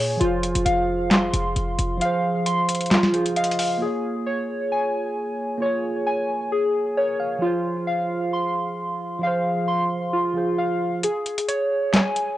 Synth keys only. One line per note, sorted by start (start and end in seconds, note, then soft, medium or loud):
0.00 0.20 G#4 medium
0.00 0.21 C#5 medium
0.00 0.20 G#5 medium
0.20 2.90 F4 loud
0.65 2.00 F5 medium
1.11 2.45 C6 medium
2.01 3.35 F5 medium
2.46 3.81 C6 medium
2.91 3.81 F4 loud
3.36 3.82 F5 medium
3.82 6.51 G#4 medium
4.26 5.61 C#5 medium
4.72 6.05 G#5 medium
5.62 6.96 C#5 medium
6.07 7.42 G#5 medium
6.52 7.42 G#4 medium
6.97 7.42 C#5 medium
7.42 10.12 F4 medium
7.87 9.22 F5 medium
8.33 9.67 C6 medium
9.23 10.57 F5 medium
9.68 11.03 C6 medium
10.13 11.03 F4 medium
10.58 11.03 F5 medium
11.04 12.38 G#4 medium
11.48 12.38 C#5 medium
11.94 12.38 G#5 medium